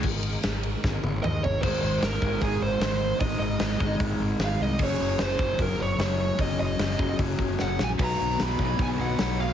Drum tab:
CC |x---------------|x---------------|----------------|x---------------|
RD |--x-x-x---------|----------------|----------------|----------------|
HH |----------------|----o---o---o---|o---o---o---o---|----o---o---o---|
SD |----o---o-------|----oo------o---|----oo------o---|----oo------o---|
T1 |----------o-----|----------------|----------------|----------------|
T2 |------------o---|----------------|----------------|----------------|
FT |--------------o-|----------------|----------------|----------------|
BD |o-------o-------|o-----o-o-------|o-----o-o-------|o-----o-o-------|

CC |----------------|x---------------|
RD |----------------|----------------|
HH |o---o---o-------|o---o---o---o---|
SD |----oo------o-o-|----oo------o---|
T1 |----------------|----------------|
T2 |----------------|----------------|
FT |----------------|----------------|
BD |o-----o-o-o-----|o-----o-o-------|